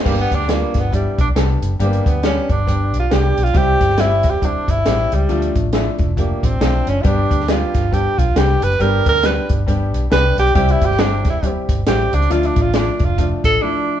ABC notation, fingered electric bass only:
X:1
M:4/4
L:1/8
Q:"Swing" 1/4=137
K:Gmix
V:1 name="Fingered electric bass" clef=bass
G,,, D,,2 G,,,2 B,,, C,, ^F,,, | G,,, D,,2 G,,,2 B,,, C,, B,,, | C,, G,,,2 E,,,2 G,,, A,,, ^C,, | D,, A,,,2 F,,,2 A,,, B,,, ^F,,, |
G,,, D,,2 G,,,2 B,,, C,, ^F,,, | G,,, D,,2 G,,,2 B,,, C,, B,,, | C,, G,,,2 E,,,2 G,,, A,,, ^C,, | D,, A,,,2 F,,,2 A,,, z2 |]